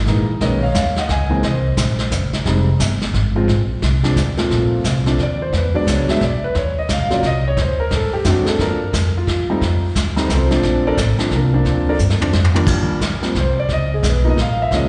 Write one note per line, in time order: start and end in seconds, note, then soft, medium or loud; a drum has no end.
0.06 0.40 A#1 medium
0.06 0.27 E3 medium
0.06 0.27 G#3 medium
0.06 0.27 A#3 medium
0.06 0.27 D#4 medium
0.06 kick soft
0.06 snare soft
0.40 0.74 B1 medium
0.40 0.61 D#3 medium
0.40 0.61 G#3 medium
0.40 0.61 A#3 medium
0.40 0.61 C#4 medium
0.40 0.62 B4 medium
0.40 0.61 D#5 medium
0.40 brush sweep medium
0.40 kick soft
0.40 snare soft
0.63 0.95 C#5 medium
0.63 0.98 F5 medium
0.75 1.08 D#2 medium
0.75 kick soft
0.75 snare medium
0.75 hi-hat pedal medium
0.96 1.11 F#5 medium
0.96 snare soft
1.00 1.11 D#5 medium
1.08 1.42 C#2 medium
1.08 1.43 D#5 medium
1.08 1.42 G#5 medium
1.08 kick soft
1.08 snare soft
1.30 1.42 E3 medium
1.30 1.42 G#3 medium
1.30 1.42 A#3 medium
1.30 1.42 C4 medium
1.43 1.77 C2 medium
1.43 2.09 C5 medium
1.43 2.08 D#5 medium
1.43 brush sweep soft
1.43 kick soft
1.43 snare soft
1.77 2.11 A#1 medium
1.77 kick soft
1.77 snare medium
1.77 hi-hat pedal medium
1.98 snare soft
2.11 2.45 F#1 medium
2.11 kick soft
2.11 snare medium
2.11 hi-hat pedal medium
2.33 snare soft
2.45 2.79 F1 medium
2.45 2.66 G3 medium
2.45 2.66 G#3 medium
2.45 2.66 C4 medium
2.45 2.66 D#4 medium
2.45 brush sweep soft
2.45 kick soft
2.45 snare soft
2.80 3.13 G1 medium
2.80 kick soft
2.80 snare medium
2.80 hi-hat pedal medium
3.01 snare soft
3.13 3.47 G#1 medium
3.13 kick soft
3.13 snare soft
3.35 3.47 F3 medium
3.35 3.47 G#3 medium
3.35 3.48 C4 medium
3.35 3.48 F4 medium
3.48 3.81 A#1 medium
3.48 brush sweep soft
3.48 kick soft
3.48 snare soft
3.82 4.15 C2 medium
3.82 kick soft
3.82 snare soft
4.03 4.15 F3 medium
4.03 4.15 G#3 medium
4.03 4.15 C4 medium
4.03 4.16 D4 medium
4.03 snare soft
4.16 4.49 D2 medium
4.16 kick soft
4.16 snare medium
4.16 hi-hat pedal soft
4.37 4.82 A#2 medium
4.37 4.83 F3 medium
4.37 4.83 A3 medium
4.37 4.83 C4 medium
4.37 4.83 F4 medium
4.37 snare soft
4.50 4.83 A#1 medium
4.50 brush sweep soft
4.50 kick soft
4.50 snare soft
4.84 5.18 C2 medium
4.84 kick soft
4.84 snare medium
4.84 hi-hat pedal medium
5.06 5.18 F3 medium
5.06 5.18 A3 medium
5.06 5.18 C4 medium
5.06 5.18 D4 medium
5.06 snare soft
5.18 5.52 D#2 medium
5.18 kick soft
5.18 snare soft
5.23 5.42 D5 medium
5.42 5.54 C5 medium
5.53 5.73 E2 medium
5.53 5.76 B4 medium
5.53 brush sweep soft
5.53 kick soft
5.53 snare soft
5.74 6.06 F#3 medium
5.74 6.07 G#3 medium
5.74 6.07 B3 medium
5.74 6.07 D4 medium
5.74 5.87 D5 medium
5.74 muted upright bass stroke soft
5.87 6.07 C#2 medium
5.87 kick soft
5.87 snare medium
5.87 hi-hat pedal medium
5.92 6.10 C#5 medium
6.08 6.20 F#3 medium
6.08 6.20 G#3 soft
6.08 6.20 B3 soft
6.08 6.20 D4 medium
6.08 6.22 E5 medium
6.08 muted upright bass stroke soft
6.08 snare soft
6.21 6.41 B1 medium
6.21 6.43 D5 medium
6.21 kick soft
6.21 snare soft
6.42 6.56 B4 medium
6.42 muted upright bass stroke soft
6.55 6.88 D#2 medium
6.55 6.77 C#5 medium
6.55 brush sweep soft
6.55 kick soft
6.55 snare soft
6.79 6.90 D#5 medium
6.89 7.00 C#2 medium
6.89 7.12 F5 medium
6.89 kick soft
6.89 snare medium
6.89 hi-hat pedal medium
7.00 7.11 A#1 medium
7.10 7.22 F#1 medium
7.10 7.22 F#3 medium
7.10 7.22 A#3 medium
7.10 7.22 C#4 medium
7.10 7.22 F4 medium
7.10 7.24 D5 medium
7.10 snare soft
7.23 7.56 C2 medium
7.23 7.46 D#5 loud
7.23 kick soft
7.23 snare soft
7.48 7.59 C#5 medium
7.57 7.90 D2 medium
7.57 brush sweep soft
7.57 kick soft
7.57 snare soft
7.62 7.80 C5 medium
7.80 7.92 A#4 medium
7.91 8.11 A2 medium
7.91 kick soft
7.91 snare soft
7.96 8.14 A4 medium
8.12 8.25 G4 medium
8.12 muted upright bass stroke soft
8.24 8.45 F#2 medium
8.24 8.59 F#3 medium
8.24 8.59 A3 medium
8.24 8.60 C4 medium
8.24 8.59 D4 medium
8.24 kick soft
8.24 snare medium
8.24 hi-hat pedal soft
8.29 8.48 F#4 medium
8.45 8.47 G#4 medium
8.45 8.60 A4 medium
8.45 muted upright bass stroke soft
8.45 snare soft
8.59 8.92 G2 medium
8.59 8.79 F3 medium
8.59 8.79 A3 soft
8.59 8.79 A#3 soft
8.59 8.79 D4 medium
8.59 9.12 A#4 medium
8.59 brush sweep medium
8.59 kick soft
8.59 snare soft
8.93 9.26 F2 medium
8.93 kick soft
8.93 snare medium
8.93 hi-hat pedal medium
9.18 9.93 F4 medium
9.27 9.60 D#2 medium
9.27 kick soft
9.27 snare soft
9.50 9.61 G3 medium
9.50 9.61 A3 medium
9.50 9.61 C4 medium
9.50 9.61 D#4 medium
9.61 9.94 F2 medium
9.61 brush sweep soft
9.61 kick soft
9.61 snare soft
9.95 10.28 D2 medium
9.95 kick soft
9.95 snare medium
9.95 hi-hat pedal medium
10.16 10.28 G3 medium
10.16 10.28 A3 medium
10.16 10.28 C4 medium
10.16 10.28 D#4 medium
10.16 snare soft
10.28 10.62 C2 medium
10.28 10.31 B4 medium
10.28 kick soft
10.28 snare medium
10.28 hi-hat pedal medium
10.33 10.50 C4 medium
10.33 10.83 F4 medium
10.33 10.83 A4 medium
10.33 10.83 C5 medium
10.50 10.95 F3 medium
10.50 10.95 A3 medium
10.50 10.95 C4 medium
10.50 10.86 D4 medium
10.50 snare soft
10.63 10.96 A#1 medium
10.63 brush sweep soft
10.63 kick soft
10.63 snare soft
10.87 10.98 D4 medium
10.87 10.98 A4 medium
10.87 10.98 A#4 medium
10.87 10.98 D5 loud
10.97 11.17 A1 medium
10.97 kick soft
10.97 snare medium
10.97 hi-hat pedal medium
11.18 11.30 F3 medium
11.18 11.30 A3 medium
11.18 11.30 C4 medium
11.18 11.30 D4 medium
11.18 muted upright bass stroke soft
11.18 snare soft
11.31 11.64 C2 medium
11.31 kick soft
11.31 snare soft
11.35 11.52 A#3 soft
11.35 11.53 D4 soft
11.35 11.85 F4 soft
11.35 11.85 A#4 medium
11.53 11.97 F3 medium
11.53 11.97 A#3 medium
11.53 11.97 C4 medium
11.53 11.88 D4 medium
11.65 11.98 D2 medium
11.65 brush sweep medium
11.65 kick soft
11.65 snare soft
11.89 11.96 D4 medium
11.89 11.96 A4 medium
11.89 11.96 A#4 medium
11.89 11.96 D5 medium
11.99 12.32 G2 medium
11.99 hi-hat pedal medium
12.10 snare medium
12.21 12.32 F3 medium
12.21 12.32 A3 medium
12.21 12.32 C4 medium
12.21 12.32 D4 medium
12.21 floor tom medium
12.33 12.66 F2 medium
12.33 snare medium
12.44 floor tom medium
12.54 12.99 D#2 medium
12.54 12.99 F3 medium
12.54 12.99 G3 medium
12.54 12.99 A#3 medium
12.54 12.99 D4 medium
12.54 floor tom medium
12.67 13.00 D#2 medium
12.67 brush sweep soft
12.67 kick medium
12.67 snare soft
12.67 crash medium
13.01 13.34 D2 medium
13.01 kick soft
13.01 snare medium
13.01 hi-hat pedal soft
13.22 13.34 F3 medium
13.22 13.34 G3 soft
13.22 13.34 A#3 medium
13.22 13.34 C4 medium
13.22 snare soft
13.35 13.68 C2 medium
13.35 kick soft
13.35 snare soft
13.40 13.58 C5 medium
13.59 13.70 D5 medium
13.69 14.02 C#2 medium
13.69 brush sweep soft
13.69 kick soft
13.69 snare soft
13.73 13.92 D#5 loud
13.94 14.05 G#4 medium
14.03 14.36 B1 medium
14.03 kick soft
14.03 snare medium
14.03 hi-hat pedal medium
14.09 14.27 B4 medium
14.24 14.36 F3 medium
14.24 14.36 A#3 medium
14.24 14.36 B3 medium
14.24 14.36 D#4 medium
14.30 14.40 D#5 medium
14.37 14.70 A#1 medium
14.37 kick soft
14.37 snare soft
14.42 14.60 F5 medium
14.62 14.73 E5 medium
14.71 14.89 C#2 medium
14.71 14.89 F3 medium
14.71 14.89 G#3 medium
14.71 14.89 A#3 medium
14.71 14.89 C#4 medium
14.71 brush sweep medium
14.71 kick soft
14.71 snare soft
14.75 14.89 D#5 medium